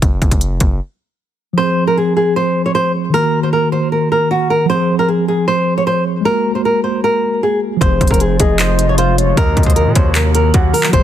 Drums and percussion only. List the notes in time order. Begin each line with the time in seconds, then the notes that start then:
0.02 kick, closed hi-hat
0.22 kick, closed hi-hat
0.31 kick, closed hi-hat
0.41 closed hi-hat
0.60 kick, closed hi-hat
7.81 kick, closed hi-hat
8.01 kick, closed hi-hat
8.07 kick, closed hi-hat
8.14 closed hi-hat
8.20 closed hi-hat
8.40 kick, closed hi-hat
8.59 clap, closed hi-hat
8.79 closed hi-hat
8.98 closed hi-hat
9.18 closed hi-hat
9.37 kick, closed hi-hat
9.57 kick, closed hi-hat
9.63 kick, closed hi-hat
9.70 closed hi-hat
9.76 closed hi-hat
9.95 kick, closed hi-hat
10.15 clap, closed hi-hat
10.35 closed hi-hat
10.54 kick, closed hi-hat
10.74 open hi-hat
10.83 clap
10.93 kick, closed hi-hat